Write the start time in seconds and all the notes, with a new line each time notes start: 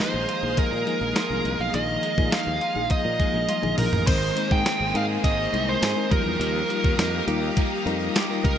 Already playing: D#3 F3 G#3 A#3 D#4 F4 G4 G#4 F5 A#5 D#6
0.00 D#4 C5, snare, closed hi-hat
0.14 A#1
0.28 F4, closed hi-hat
0.43 A#1 F3 A#3 D#4 G#4
0.57 D#4 A#4, kick, closed hi-hat
0.72 A#2
0.86 F3 G#3 A#3 D#4 G#4, closed hi-hat
1.01 A#1
1.15 F4 A#4, snare, closed hi-hat
1.30 C2 F3 A#3 D#4 G#4
1.45 C2 D#4, closed hi-hat
1.60 B1 F5
1.73 A#1 D#3 F3 A#3 D#4 G#4 D#5, closed hi-hat
2.03 G#3, closed hi-hat
2.17 A#2 F3 A#3 D#4 G#4, kick
2.32 D#4 F5, snare, closed hi-hat
2.47 D#2
2.61 F4, closed hi-hat
2.75 A#1 F3 A#3 D#4 G#4
2.90 D#4 D#5, muted fretless electric bass stroke, kick, closed hi-hat
3.05 A#2
3.18 F3 G#3 A#3 D#4 G#4, kick, closed hi-hat
3.34 A#1
3.49 F4, closed hi-hat, high tom
3.62 A#1 F3 A#3 D#4 G#4, mid tom
3.78 A#1 D#4 A#4, mid tom, open hi-hat
3.93 A1, floor tom
4.06 G#1 G#2 D#3 G#3 C4 D#4 G#4 A#4 C5 A#5 D#6, kick, closed hi-hat, crash
4.10 G#3
4.35 G#3 A#3 C4 D#4 A#4, closed hi-hat
4.51 G#2 G5, kick
4.66 C4, snare, closed hi-hat, tambourine
4.80 G#1
4.94 G#2 G#3 C4 D#4 G#4 A#4 F5, closed hi-hat
5.22 G#1 G#2 D#3 G#3 A#3 D#5, kick, closed hi-hat
5.52 C2 G#3 C4 D#4 C5, closed hi-hat
5.69 C5
5.82 G#2 G#4, snare, closed hi-hat, tambourine
5.96 G#3 C4 D#4 A#4
6.10 D#2 F3 G3 A#3 D#4 F4 G4 A#4 F5 D#6, kick, closed hi-hat
6.25 E2
6.38 D#2 D#3 F3 A#3, closed hi-hat
6.42 D#4
6.69 G3 A#3 D#4 F4 A#4, closed hi-hat
6.84 D#2, kick
6.98 F2 D#4, snare, closed hi-hat, tambourine
7.27 D#2 G3 D#4 F4 G4 A#4, closed hi-hat
7.56 D#3 A#3 D#4, kick, closed hi-hat
7.85 F2 G3 D#4 F4 A#4, closed hi-hat
8.15 G4, snare, closed hi-hat, tambourine
8.30 G3 D#4 F4 A#4
8.43 C#2 A#3 D#4 A#4, kick, closed hi-hat